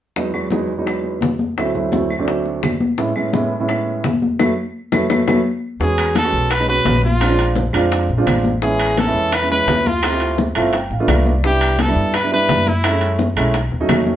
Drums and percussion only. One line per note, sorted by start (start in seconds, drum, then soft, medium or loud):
0.16 high bongo medium
0.16 high conga soft
0.33 high conga soft
0.33 claves medium
0.50 high bongo soft
0.50 high conga medium
0.68 high conga soft
0.87 high bongo medium
0.87 high conga soft
0.87 claves medium
1.04 high conga soft
1.21 high bongo medium
1.21 low bongo medium
1.21 high conga medium
1.39 high conga medium
1.57 high bongo medium
1.57 high conga soft
1.57 claves medium
1.74 high bongo soft
1.74 high conga soft
1.92 high bongo medium
1.92 high conga medium
2.10 high conga soft
2.10 claves medium
2.28 high bongo medium
2.28 high conga soft
2.46 high bongo soft
2.46 high conga soft
2.63 high bongo medium
2.63 low bongo medium
2.63 high conga medium
2.63 claves medium
2.80 high bongo soft
2.80 high conga medium
2.98 high bongo medium
2.98 high conga soft
3.16 high conga soft
3.16 claves medium
3.33 high bongo soft
3.33 high conga medium
3.51 high conga soft
3.68 high bongo medium
3.68 high conga soft
3.68 claves medium
3.87 high conga soft
4.04 high bongo medium
4.04 low bongo medium
4.04 high conga medium
4.22 high conga medium
4.39 high bongo medium
4.39 high conga loud
4.39 claves medium
4.92 high bongo medium
4.92 high conga medium
4.92 claves medium
5.10 high bongo medium
5.10 high conga medium
5.10 claves medium
5.28 high bongo medium
5.28 high conga medium
5.28 claves medium
5.81 high bongo medium
5.81 high conga soft
5.98 high conga soft
5.98 high timbale medium
5.98 claves medium
6.15 high bongo medium
6.15 high conga medium
6.15 high timbale medium
6.33 high conga soft
6.50 high bongo medium
6.50 high conga soft
6.50 high timbale medium
6.50 claves medium
6.68 high conga soft
6.85 high bongo medium
6.85 low bongo medium
6.85 high conga medium
6.85 high timbale medium
6.85 low timbale medium
7.03 high conga medium
7.20 high bongo medium
7.20 high conga soft
7.20 high timbale medium
7.20 claves medium
7.39 high bongo soft
7.39 high conga soft
7.39 high timbale medium
7.55 high bongo medium
7.55 high conga medium
7.73 high conga soft
7.73 high timbale medium
7.73 claves medium
7.91 high bongo medium
7.91 high conga soft
7.91 high timbale medium
8.09 high bongo soft
8.09 high conga soft
8.27 high bongo medium
8.27 low bongo medium
8.27 high conga medium
8.27 high timbale medium
8.27 claves medium
8.44 high bongo soft
8.44 high conga medium
8.62 high bongo medium
8.62 high conga soft
8.79 high conga soft
8.79 high timbale medium
8.79 claves medium
8.97 high bongo medium
8.97 high conga medium
8.97 high timbale medium
9.16 high conga soft
9.32 high bongo medium
9.32 high conga soft
9.32 high timbale medium
9.32 claves medium
9.51 high conga soft
9.68 high bongo medium
9.68 low bongo medium
9.68 high conga medium
9.68 high timbale medium
9.68 low timbale medium
9.85 high conga medium
10.02 high bongo medium
10.02 high conga soft
10.02 high timbale medium
10.02 claves medium
10.20 high bongo soft
10.20 high conga soft
10.20 high timbale medium
10.38 high bongo medium
10.38 high conga medium
10.55 high conga soft
10.55 high timbale medium
10.55 claves medium
10.73 high bongo medium
10.73 high conga soft
10.73 high timbale medium
10.91 high bongo soft
10.91 high conga soft
11.08 high bongo medium
11.08 low bongo medium
11.08 high conga medium
11.08 high timbale medium
11.08 claves medium
11.25 high bongo soft
11.25 high conga medium
11.43 high bongo medium
11.43 high conga soft
11.61 high conga soft
11.61 high timbale medium
11.61 claves medium
11.79 high bongo medium
11.79 high conga medium
11.79 high timbale medium
11.97 high conga soft
12.14 high bongo medium
12.14 high conga soft
12.14 high timbale medium
12.14 claves medium
12.32 high conga soft
12.49 high bongo medium
12.49 low bongo medium
12.49 high conga medium
12.49 high timbale medium
12.67 high conga medium
12.84 high bongo medium
12.84 high conga soft
12.84 high timbale medium
12.84 claves medium
13.01 high bongo soft
13.01 high conga soft
13.01 high timbale medium
13.19 high bongo soft
13.19 high conga medium
13.37 high conga soft
13.37 high timbale medium
13.37 claves medium
13.54 high bongo medium
13.54 high conga soft
13.54 high timbale medium
13.72 high bongo soft
13.72 high conga soft
13.89 high bongo medium
13.89 low bongo medium
13.89 high conga medium
13.89 high timbale medium
13.89 low timbale medium
13.89 claves medium
14.06 high bongo soft
14.06 high conga medium